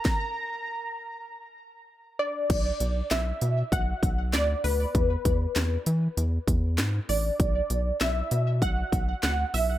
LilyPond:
<<
  \new Staff \with { instrumentName = "Analog polysynth" } { \time 4/4 \key b \dorian \tempo 4 = 98 ais''2. r8 d''8~ | d''4 e''4 fis''4 d''8 b'8~ | b'2~ b'8 r4 d''8~ | d''4 e''4 fis''4 fis''8 e''8 | }
  \new Staff \with { instrumentName = "Analog synth bass" } { \clef bass \time 4/4 \key b \dorian r1 | b,,8 b,,8 b,,8 b,8 b,,8 b,,8 d,8 d,8 | e,8 e,8 e,8 e8 e,8 e,8 gis,8 a,,8 | b,,8 b,,8 b,,8 b,8 b,,8 b,,8 d,8 b,,8 | }
  \new DrumStaff \with { instrumentName = "Drums" } \drummode { \time 4/4 <bd sn>4 r4 r4 r4 | <cymc hh bd>8 hh8 <hc hh sn>8 hh8 <hh bd>8 <hh bd>8 <hc hh sn>8 hho8 | <hh bd>8 <hh bd>8 <hc hh sn>8 hh8 hh8 <hh bd>8 <hc hh sn>8 hho8 | <hh bd>8 hh8 <hc hh sn>8 hh8 <hh bd>8 <hh bd>8 <hc hh sn>8 hho8 | }
>>